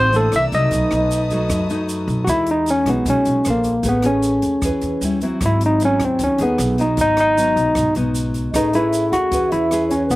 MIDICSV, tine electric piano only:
0, 0, Header, 1, 2, 480
1, 0, Start_track
1, 0, Tempo, 391389
1, 884, Time_signature, 4, 2, 24, 8
1, 12455, End_track
2, 0, Start_track
2, 0, Title_t, "Tine electric piano"
2, 0, Program_c, 0, 4
2, 0, Note_on_c, 0, 72, 97
2, 193, Note_off_c, 0, 72, 0
2, 200, Note_on_c, 0, 69, 81
2, 429, Note_off_c, 0, 69, 0
2, 440, Note_on_c, 0, 76, 90
2, 540, Note_off_c, 0, 76, 0
2, 669, Note_on_c, 0, 75, 89
2, 2286, Note_off_c, 0, 75, 0
2, 2753, Note_on_c, 0, 66, 72
2, 2807, Note_off_c, 0, 66, 0
2, 2814, Note_on_c, 0, 64, 98
2, 3055, Note_off_c, 0, 64, 0
2, 3079, Note_on_c, 0, 63, 81
2, 3307, Note_off_c, 0, 63, 0
2, 3317, Note_on_c, 0, 61, 90
2, 3546, Note_off_c, 0, 61, 0
2, 3549, Note_on_c, 0, 59, 70
2, 3782, Note_off_c, 0, 59, 0
2, 3800, Note_on_c, 0, 61, 83
2, 4275, Note_off_c, 0, 61, 0
2, 4295, Note_on_c, 0, 58, 76
2, 4762, Note_off_c, 0, 58, 0
2, 4763, Note_on_c, 0, 59, 82
2, 4967, Note_off_c, 0, 59, 0
2, 4982, Note_on_c, 0, 61, 81
2, 6364, Note_off_c, 0, 61, 0
2, 6692, Note_on_c, 0, 64, 92
2, 6892, Note_off_c, 0, 64, 0
2, 6940, Note_on_c, 0, 63, 81
2, 7137, Note_off_c, 0, 63, 0
2, 7173, Note_on_c, 0, 61, 86
2, 7395, Note_off_c, 0, 61, 0
2, 7416, Note_on_c, 0, 60, 74
2, 7636, Note_off_c, 0, 60, 0
2, 7651, Note_on_c, 0, 61, 77
2, 7873, Note_off_c, 0, 61, 0
2, 7880, Note_on_c, 0, 59, 76
2, 8351, Note_on_c, 0, 63, 76
2, 8356, Note_off_c, 0, 59, 0
2, 8584, Note_off_c, 0, 63, 0
2, 8600, Note_on_c, 0, 63, 86
2, 8822, Note_off_c, 0, 63, 0
2, 8837, Note_on_c, 0, 63, 78
2, 9732, Note_off_c, 0, 63, 0
2, 10495, Note_on_c, 0, 63, 84
2, 10733, Note_on_c, 0, 64, 91
2, 10737, Note_off_c, 0, 63, 0
2, 11196, Note_on_c, 0, 66, 86
2, 11223, Note_off_c, 0, 64, 0
2, 11647, Note_off_c, 0, 66, 0
2, 11678, Note_on_c, 0, 64, 88
2, 12156, Note_on_c, 0, 61, 72
2, 12176, Note_off_c, 0, 64, 0
2, 12400, Note_on_c, 0, 59, 88
2, 12408, Note_off_c, 0, 61, 0
2, 12455, Note_off_c, 0, 59, 0
2, 12455, End_track
0, 0, End_of_file